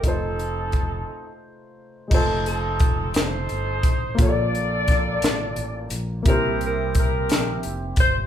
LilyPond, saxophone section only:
\new Staff \with { instrumentName = "Saxophone section" } { \time 6/8 \key f \mixolydian \tempo 4. = 58 << { a'2 r4 | a'8 a'4 c''4. | d''2~ d''8 r8 | bes'8 bes'8 bes'4 r8 c''8 | } \\ { <c' ees'>2 r4 | <c' ees'>8 <c' ees'>4 <ees' a'>4. | <f' a'>2~ <f' a'>8 r8 | <e' g'>4 <e' g'>4. r8 | } >> }